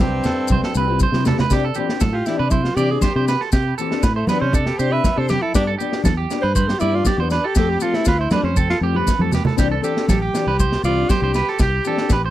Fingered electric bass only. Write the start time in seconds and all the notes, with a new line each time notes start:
0.00 C2
0.50 C2
0.75 C2
1.12 C3
1.51 C3
2.02 A2
2.39 C3
2.77 C3
3.16 C3
3.53 C3
4.03 A2
4.42 C3
4.79 C3
5.18 C3
5.55 G2
6.06 E2
6.44 G2
6.82 G2
7.18 E2
7.56 F2
8.07 D2
8.43 F2
8.81 F2
9.19 F2
9.59 C2
10.09 A1
10.47 C2
10.83 C2
11.22 C2
11.59 C2
12.10 A1